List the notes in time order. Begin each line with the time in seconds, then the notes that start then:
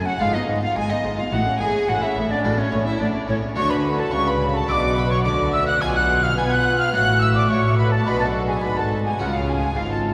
Already playing: F#2 A3 C#4 F#4
0.06 C#4 F#4 F#5
0.20 G#1 G#2 G#3 B3 F4 F5
0.34 B3 D#4 D#5
0.48 G#1 G#2 G#3
0.62 B3 F4 F5
0.76 G#1 G#2 G#3 G#4 G#5
0.90 B3 D#4 D#5
1.04 G#1 G#2 G#3
1.18 B3 F4 F5
1.32 A1 A2 A3 F#4 F#5
1.47 C#4
1.60 A1 A2 A3 G#4 G#5
1.74 C#4
1.88 A1 A2 A3 F#4 F#5
2.02 C#4 E4 E5
2.16 A1 A2 A3
2.30 C#4 D4 D5
2.44 A1 A2 A3 C#4 F#4
2.58 C#4 C#5
2.72 A1 A2 A3
2.86 C#4 E4 E5
3.00 A1 A2 A3 D4 D5
3.15 C#4
3.28 A1 A2 A3 C#4 C#5
3.43 C#4
3.56 D2 D3 A3 D4 F#4 C#5 C#6
3.70 B4 B5
3.98 A4 A5
4.12 C#2 C#3 C#5 C#6
4.27 B4 B5 C#6
4.31 B5
4.54 A4 A5
4.68 B1 B2 G#3 D4 F#4 D5 D6 E6
4.96 B4 B5
5.11 C#5 C#6
5.24 D2 D3 F#4 D5 D6
5.53 E5 E6
5.67 F#5 F#6
5.80 B1 B2 G#3 C#4 F4 G#5 G#6
5.95 F#5 F#6
6.23 F5 F6
6.37 B2 B3 F4 G#5 G#6
6.51 F#5 F#6
6.79 F5 F6
6.93 A1 A2 A3 C#4 F#4 F#5 F#6
7.21 E5 E6
7.35 D5 D6
7.49 A2 A3 F#4 C#5 C#6
7.78 B4 B5
7.92 A4 A5
8.05 B1 B2 G#3 D4 F#4 B4 B5
8.20 A4 A5
8.48 G#4 G#5
8.63 G#1 G#2 F#4 B4 B5
8.77 A4 A5
9.05 G#4 G#5
9.19 C#2 C#3 B3 C#4 F4 F#4 F#5
9.33 F4 F5
9.47 G#4 G#5
9.76 G#1 G#2 F4 F5
9.91 A4 A5